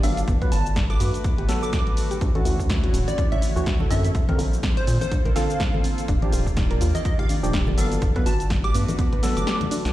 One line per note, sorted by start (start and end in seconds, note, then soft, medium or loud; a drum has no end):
0.00 0.23 G1 loud
0.00 0.26 D#3 medium
0.00 0.38 F#3 medium
0.00 0.24 A#3 medium
0.00 0.38 B3 medium
0.00 0.07 D4 medium
0.00 0.24 F4 medium
0.00 0.38 A4 medium
0.00 0.26 D5 medium
0.00 0.18 F5 medium
0.00 open hi-hat loud
0.00 shaker medium
0.17 closed hi-hat medium
0.17 shaker soft
0.28 0.39 G1 loud
0.28 6.04 D3 medium
0.28 2.19 A3 medium
0.28 0.31 B3 loud
0.28 4.11 F#4 medium
0.28 2.19 B4 medium
0.28 kick loud
0.28 closed hi-hat medium
0.28 shaker soft
0.42 0.57 F#3 medium
0.42 0.57 B3 medium
0.42 0.46 B4 medium
0.42 0.57 B4 loud
0.42 kick medium
0.42 closed hi-hat soft
0.52 0.97 G1 loud
0.52 0.66 A5 medium
0.52 open hi-hat loud
0.52 shaker medium
0.66 shaker soft
0.76 0.82 D4 medium
0.76 kick loud
0.76 snare loud
0.76 closed hi-hat medium
0.76 shaker soft
0.90 0.94 A4 loud
0.90 1.01 D6 loud
0.90 closed hi-hat soft
1.00 1.11 G2 loud
1.00 1.04 F#4 medium
1.00 open hi-hat loud
1.00 shaker medium
1.14 closed hi-hat soft
1.14 shaker soft
1.24 kick loud
1.24 closed hi-hat medium
1.24 shaker soft
1.38 1.46 G1 loud
1.38 1.45 G4 medium
1.38 closed hi-hat soft
1.49 2.20 F#3 loud
1.49 2.20 B3 medium
1.49 1.55 A4 medium
1.49 2.20 A4 loud
1.49 snare medium
1.49 open hi-hat loud
1.49 shaker medium
1.63 1.67 A4 medium
1.63 1.69 D6 medium
1.63 shaker soft
1.73 1.82 F#4 medium
1.73 1.82 D6 medium
1.73 kick loud
1.73 snare loud
1.73 closed hi-hat medium
1.73 shaker soft
1.87 closed hi-hat soft
1.97 open hi-hat loud
1.97 shaker medium
2.11 2.15 G4 loud
2.11 closed hi-hat soft
2.11 shaker soft
2.21 2.32 D2 loud
2.21 4.13 A3 medium
2.21 2.27 D4 medium
2.21 4.13 E4 medium
2.21 4.13 C#5 medium
2.21 kick loud
2.21 closed hi-hat medium
2.21 shaker soft
2.35 3.53 E3 medium
2.35 3.53 C#4 medium
2.35 3.53 F#4 medium
2.35 2.39 A4 loud
2.35 closed hi-hat soft
2.35 high conga medium
2.45 2.90 D2 medium
2.45 2.49 E4 medium
2.45 open hi-hat loud
2.45 high bongo medium
2.45 shaker medium
2.59 kick medium
2.59 shaker soft
2.70 kick loud
2.70 snare loud
2.70 closed hi-hat medium
2.70 high conga medium
2.70 shaker soft
2.84 2.90 F#4 medium
2.84 closed hi-hat soft
2.94 3.05 D1 loud
2.94 2.97 C#4 medium
2.94 open hi-hat loud
2.94 shaker medium
3.08 3.29 D5 loud
3.08 closed hi-hat soft
3.08 high bongo medium
3.08 high conga medium
3.08 shaker soft
3.18 3.21 C#4 loud
3.18 kick loud
3.18 closed hi-hat medium
3.18 shaker soft
3.32 3.36 C#5 medium
3.32 3.43 E5 medium
3.32 closed hi-hat soft
3.32 low conga medium
3.42 open hi-hat loud
3.42 high conga medium
3.42 shaker medium
3.56 3.87 D2 medium
3.56 3.88 E3 loud
3.56 3.88 C#4 medium
3.56 3.88 F#4 loud
3.56 high bongo soft
3.56 shaker soft
3.66 3.72 D4 medium
3.66 kick loud
3.66 snare loud
3.66 closed hi-hat medium
3.66 shaker soft
3.79 3.85 A4 loud
3.79 high bongo medium
3.79 high conga medium
3.79 low conga medium
3.90 4.10 F#2 loud
3.90 4.25 D3 medium
3.90 4.25 C4 medium
3.90 3.94 E4 medium
3.90 4.25 A4 loud
3.90 4.05 E5 medium
3.90 open hi-hat loud
3.90 shaker medium
4.04 closed hi-hat medium
4.04 shaker soft
4.15 4.26 A#1 loud
4.15 7.98 A#3 medium
4.15 7.98 F4 medium
4.15 6.06 A4 medium
4.15 6.06 C5 medium
4.15 kick loud
4.15 closed hi-hat medium
4.15 shaker soft
4.29 4.44 D3 medium
4.29 4.44 C4 medium
4.29 4.35 A4 medium
4.29 4.44 A#4 loud
4.29 kick medium
4.29 closed hi-hat soft
4.29 high conga medium
4.39 4.84 A#1 medium
4.39 4.42 C4 medium
4.39 open hi-hat loud
4.39 high bongo medium
4.39 shaker medium
4.53 shaker soft
4.63 4.67 C4 loud
4.63 kick loud
4.63 snare loud
4.63 closed hi-hat medium
4.63 high conga medium
4.63 shaker soft
4.77 4.88 C5 loud
4.77 4.81 C5 medium
4.77 closed hi-hat medium
4.87 4.98 A#2 loud
4.87 open hi-hat loud
4.87 shaker medium
5.01 5.12 C5 medium
5.01 closed hi-hat soft
5.01 high bongo medium
5.01 high conga medium
5.01 shaker soft
5.12 5.17 D4 medium
5.12 kick loud
5.12 closed hi-hat medium
5.12 shaker soft
5.25 5.34 A#1 loud
5.25 5.30 A#4 loud
5.25 closed hi-hat soft
5.25 low conga medium
5.36 6.07 D3 loud
5.36 6.07 C4 medium
5.36 5.39 F4 medium
5.36 6.07 A4 loud
5.36 6.04 F5 loud
5.36 snare medium
5.36 open hi-hat loud
5.36 high conga medium
5.36 shaker medium
5.50 shaker soft
5.60 kick loud
5.60 snare loud
5.60 closed hi-hat medium
5.60 shaker soft
5.74 5.80 A4 medium
5.74 high conga medium
5.74 low conga medium
5.84 5.88 C4 medium
5.84 open hi-hat loud
5.84 shaker medium
5.98 closed hi-hat medium
5.98 shaker soft
6.08 6.19 D#1 loud
6.08 8.00 D#3 medium
6.08 6.12 D4 loud
6.08 8.00 D5 medium
6.08 kick loud
6.08 closed hi-hat medium
6.08 shaker soft
6.22 7.40 F3 medium
6.22 7.40 D4 medium
6.22 7.40 G4 medium
6.22 6.27 D5 medium
6.22 closed hi-hat soft
6.22 high conga medium
6.32 6.77 D#1 medium
6.32 open hi-hat loud
6.32 high bongo medium
6.32 shaker medium
6.46 kick medium
6.46 shaker soft
6.57 6.63 D#4 medium
6.57 kick loud
6.57 snare loud
6.57 closed hi-hat medium
6.57 high conga medium
6.57 shaker soft
6.71 6.75 A#4 loud
6.71 closed hi-hat medium
6.81 6.92 D#2 loud
6.81 6.84 F4 medium
6.81 open hi-hat loud
6.81 shaker medium
6.95 7.16 D#5 medium
6.95 closed hi-hat soft
6.95 high bongo medium
6.95 high conga loud
6.95 shaker soft
7.05 kick loud
7.05 closed hi-hat medium
7.05 shaker soft
7.19 7.25 G4 medium
7.19 7.30 F5 medium
7.19 closed hi-hat soft
7.19 low conga medium
7.29 7.33 D4 medium
7.29 open hi-hat loud
7.29 high conga medium
7.29 shaker medium
7.43 7.74 D#1 medium
7.43 7.75 F3 loud
7.43 7.75 D4 medium
7.43 7.75 G4 loud
7.43 high bongo soft
7.43 shaker soft
7.53 7.57 D4 loud
7.53 kick loud
7.53 snare loud
7.53 closed hi-hat medium
7.53 shaker soft
7.67 7.72 D5 medium
7.67 high bongo medium
7.67 high conga medium
7.67 low conga medium
7.78 7.98 G1 loud
7.78 8.12 F#3 medium
7.78 8.12 B3 medium
7.78 8.13 A4 loud
7.78 7.92 F5 medium
7.78 open hi-hat loud
7.78 shaker medium
7.92 closed hi-hat medium
7.92 shaker soft
8.02 8.13 G1 loud
8.02 9.93 A3 medium
8.02 8.08 D4 medium
8.02 9.93 D4 medium
8.02 9.93 F#4 medium
8.02 9.93 B4 medium
8.02 kick loud
8.02 closed hi-hat medium
8.02 shaker soft
8.15 8.31 F#3 medium
8.15 8.31 B3 medium
8.15 8.20 A4 loud
8.15 8.31 B4 loud
8.15 kick medium
8.15 closed hi-hat soft
8.15 high conga medium
8.26 8.71 G1 medium
8.26 8.30 F#4 medium
8.26 8.41 A5 medium
8.26 open hi-hat loud
8.26 high bongo medium
8.26 shaker medium
8.40 closed hi-hat soft
8.40 shaker soft
8.50 kick loud
8.50 snare loud
8.50 closed hi-hat medium
8.50 high conga medium
8.50 shaker soft
8.64 8.71 G4 medium
8.64 8.75 D6 loud
8.64 closed hi-hat medium
8.74 8.85 G2 loud
8.74 8.78 B3 medium
8.74 open hi-hat loud
8.74 shaker medium
8.88 closed hi-hat soft
8.88 high bongo medium
8.88 high conga medium
8.88 shaker soft
8.99 9.02 B3 loud
8.99 kick loud
8.99 closed hi-hat medium
8.99 shaker soft
9.13 9.17 B4 medium
9.13 closed hi-hat soft
9.13 low conga medium
9.23 9.93 F#3 loud
9.23 9.93 B3 medium
9.23 9.93 A4 loud
9.23 snare medium
9.23 open hi-hat loud
9.23 high conga medium
9.23 shaker medium
9.37 9.45 G1 medium
9.37 9.43 D6 medium
9.37 closed hi-hat soft
9.37 shaker soft
9.47 9.51 G4 medium
9.47 9.56 D6 medium
9.47 snare loud
9.47 closed hi-hat medium
9.47 shaker soft
9.61 closed hi-hat soft
9.61 high conga loud
9.61 low conga medium
9.71 9.80 D4 medium
9.71 open hi-hat loud
9.71 shaker medium
9.85 9.93 B1 loud
9.85 snare medium
9.85 closed hi-hat medium
9.85 shaker soft